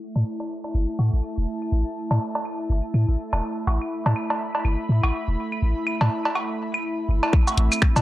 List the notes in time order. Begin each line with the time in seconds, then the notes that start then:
Already playing: A3 E4 E5
0.15 A2 A5, cowbell
0.40 cowbell, claves
0.64 cowbell
0.74 G1, claves
0.99 A2, cowbell
1.13 A1
1.23 claves
1.38 E1
1.62 claves
1.72 A1
2.11 A2, cowbell, claves
2.35 cowbell
2.45 claves
2.70 G1
2.94 A2, claves
3.08 A1
3.33 E1, cowbell, claves
3.39 B5
3.67 A1, cowbell
3.81 claves
4.06 A2, cowbell
4.16 claves
4.30 cowbell
4.55 cowbell
4.65 G1, claves
4.89 A2
5.03 A1, cowbell, claves
5.28 E1
5.52 claves
5.62 A1
5.87 claves
6.01 A2, cowbell
6.25 cowbell
6.35 cowbell, claves
6.74 claves
7.09 G1
7.23 cowbell, claves
7.33 C4, kick, claves
7.47 cowbell, shaker
7.57 A1, closed hi-hat
7.72 claves, shaker
7.82 finger snap, kick
7.96 A2, cowbell, shaker